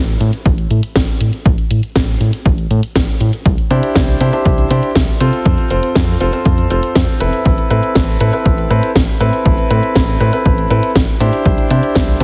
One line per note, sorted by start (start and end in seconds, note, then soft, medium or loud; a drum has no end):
0.00 0.17 A1 medium
0.08 closed hi-hat soft
0.20 0.31 A2 loud
0.20 closed hi-hat medium
0.33 closed hi-hat medium
0.46 0.67 A1 medium
0.46 kick loud
0.46 closed hi-hat medium
0.58 closed hi-hat soft
0.70 0.81 A2 medium
0.70 closed hi-hat medium
0.83 closed hi-hat medium
0.96 1.06 A1 medium
0.96 kick loud
0.96 snare loud
0.96 closed hi-hat medium
1.08 closed hi-hat soft
1.20 1.31 A2 medium
1.20 closed hi-hat medium
1.33 closed hi-hat medium
1.46 1.56 A1 loud
1.46 kick loud
1.46 closed hi-hat medium
1.58 closed hi-hat soft
1.71 1.81 A2 medium
1.71 closed hi-hat medium
1.83 closed hi-hat medium
1.96 2.17 A1 medium
1.96 kick loud
1.96 snare loud
1.96 closed hi-hat medium
2.08 closed hi-hat soft
2.21 2.31 A2 loud
2.21 closed hi-hat medium
2.33 closed hi-hat medium
2.46 2.67 A1 medium
2.46 kick loud
2.46 closed hi-hat medium
2.58 closed hi-hat soft
2.70 2.81 A2 medium
2.70 closed hi-hat medium
2.83 closed hi-hat medium
2.96 3.06 A1 medium
2.96 kick loud
2.96 snare loud
2.96 closed hi-hat medium
3.08 closed hi-hat soft
3.21 3.31 A2 medium
3.21 closed hi-hat medium
3.33 closed hi-hat medium
3.46 3.56 C2 loud
3.46 kick loud
3.46 closed hi-hat medium
3.58 closed hi-hat soft
3.70 3.81 C3 medium
3.70 4.18 D4 medium
3.70 4.18 E4 medium
3.70 4.18 G4 medium
3.70 4.18 C5 medium
3.70 closed hi-hat medium
3.83 closed hi-hat medium
3.96 4.17 C2 medium
3.96 kick loud
3.96 snare loud
3.96 closed hi-hat medium
4.08 closed hi-hat soft
4.20 4.31 C3 medium
4.20 4.31 D4 medium
4.20 4.31 E4 medium
4.20 4.31 G4 medium
4.20 4.31 C5 medium
4.20 closed hi-hat medium
4.33 4.68 D4 medium
4.33 4.68 E4 medium
4.33 4.68 G4 medium
4.33 4.68 C5 medium
4.33 closed hi-hat medium
4.46 4.67 C2 medium
4.46 kick loud
4.46 closed hi-hat medium
4.58 closed hi-hat soft
4.70 4.81 C3 medium
4.70 4.89 D4 medium
4.70 4.89 E4 medium
4.70 4.89 G4 medium
4.70 4.89 C5 loud
4.70 closed hi-hat medium
4.83 closed hi-hat medium
4.95 5.06 C2 loud
4.95 kick loud
4.95 snare loud
4.95 closed hi-hat medium
5.08 closed hi-hat soft
5.20 5.31 C3 medium
5.20 5.68 C4 medium
5.20 5.67 F4 medium
5.20 5.68 A4 medium
5.20 5.68 C5 loud
5.20 closed hi-hat medium
5.33 closed hi-hat medium
5.46 5.56 F2 medium
5.46 kick loud
5.46 closed hi-hat medium
5.58 closed hi-hat soft
5.70 5.81 F1 medium
5.70 6.18 C4 medium
5.70 6.18 F4 medium
5.70 6.18 A4 medium
5.70 6.18 C5 medium
5.70 closed hi-hat medium
5.83 closed hi-hat soft
5.95 6.17 F2 medium
5.95 kick loud
5.95 snare loud
5.95 closed hi-hat soft
6.08 closed hi-hat soft
6.20 6.31 F1 medium
6.20 6.31 C4 medium
6.20 6.31 F4 medium
6.20 6.31 A4 medium
6.20 6.31 C5 medium
6.20 closed hi-hat medium
6.33 6.68 C4 medium
6.33 6.68 F4 medium
6.33 6.68 A4 medium
6.33 6.68 C5 medium
6.33 closed hi-hat medium
6.45 6.67 F2 medium
6.45 kick loud
6.45 closed hi-hat soft
6.58 closed hi-hat soft
6.70 6.81 F1 loud
6.70 7.17 C4 medium
6.70 7.18 F4 medium
6.70 7.18 A4 medium
6.70 7.18 C5 medium
6.70 closed hi-hat medium
6.83 closed hi-hat medium
6.95 7.06 F2 loud
6.95 kick loud
6.95 snare loud
6.95 closed hi-hat soft
7.08 closed hi-hat soft
7.20 7.31 F1 loud
7.20 7.67 C4 medium
7.20 7.68 E4 medium
7.20 7.68 A4 medium
7.20 7.67 B4 medium
7.20 closed hi-hat medium
7.33 closed hi-hat medium
7.46 7.56 A1 loud
7.46 kick loud
7.46 closed hi-hat medium
7.58 closed hi-hat soft
7.70 7.81 A2 medium
7.70 8.18 C4 medium
7.70 8.18 E4 medium
7.70 8.18 A4 medium
7.70 8.18 B4 medium
7.70 closed hi-hat medium
7.83 closed hi-hat soft
7.95 8.17 A1 medium
7.95 kick loud
7.95 snare loud
7.95 closed hi-hat soft
8.08 closed hi-hat soft
8.20 8.31 A2 medium
8.20 8.31 C4 medium
8.20 8.31 E4 medium
8.20 8.31 A4 medium
8.20 8.31 B4 medium
8.20 closed hi-hat medium
8.33 8.68 C4 medium
8.33 8.68 E4 medium
8.33 8.68 A4 medium
8.33 8.68 B4 medium
8.33 closed hi-hat medium
8.46 8.67 A1 medium
8.46 kick loud
8.46 closed hi-hat soft
8.58 closed hi-hat soft
8.70 8.81 A2 medium
8.70 8.89 C4 medium
8.70 8.89 E4 medium
8.70 8.89 A4 medium
8.70 8.89 B4 loud
8.70 closed hi-hat medium
8.83 closed hi-hat soft
8.96 9.06 A1 loud
8.96 kick loud
8.96 snare loud
8.96 closed hi-hat soft
9.08 closed hi-hat soft
9.20 9.31 A2 medium
9.20 9.68 C4 medium
9.20 9.68 E4 medium
9.20 9.68 A4 medium
9.20 9.68 B4 loud
9.20 closed hi-hat medium
9.33 closed hi-hat soft
9.46 9.56 A1 loud
9.46 kick loud
9.46 closed hi-hat soft
9.58 closed hi-hat soft
9.70 9.81 A2 medium
9.70 10.18 C4 medium
9.70 10.18 E4 medium
9.70 10.17 A4 medium
9.70 10.18 B4 medium
9.70 closed hi-hat medium
9.83 closed hi-hat soft
9.96 10.17 A1 medium
9.96 kick loud
9.96 snare loud
9.96 closed hi-hat soft
10.08 closed hi-hat soft
10.20 10.31 A2 medium
10.20 10.31 C4 medium
10.20 10.31 E4 medium
10.20 10.31 A4 medium
10.20 10.31 B4 medium
10.20 closed hi-hat medium
10.33 10.68 C4 medium
10.33 10.68 E4 medium
10.33 10.68 A4 medium
10.33 10.68 B4 medium
10.33 closed hi-hat soft
10.46 10.67 A1 medium
10.46 kick loud
10.46 closed hi-hat medium
10.58 closed hi-hat soft
10.70 10.81 A2 medium
10.70 10.89 C4 medium
10.70 10.89 E4 medium
10.70 10.89 A4 medium
10.70 10.89 B4 loud
10.70 closed hi-hat medium
10.83 closed hi-hat soft
10.96 11.06 A1 medium
10.96 kick loud
10.96 snare loud
10.96 closed hi-hat soft
11.08 closed hi-hat soft
11.20 11.31 A2 medium
11.20 11.67 D4 medium
11.20 11.67 E4 medium
11.20 11.68 G4 medium
11.20 11.68 C5 loud
11.20 closed hi-hat medium
11.33 closed hi-hat soft
11.46 11.56 C2 loud
11.46 kick loud
11.46 closed hi-hat medium
11.58 closed hi-hat soft
11.70 11.81 C3 medium
11.70 12.18 D4 medium
11.70 12.18 E4 medium
11.70 12.18 G4 medium
11.70 12.18 C5 medium
11.70 closed hi-hat medium
11.83 closed hi-hat soft
11.96 12.17 C2 medium
11.96 kick loud
11.96 snare loud
11.96 closed hi-hat soft
12.08 closed hi-hat soft
12.20 12.24 C3 loud
12.20 12.24 D4 medium
12.20 12.24 E4 medium
12.20 12.24 G4 medium
12.20 12.24 C5 medium
12.20 closed hi-hat medium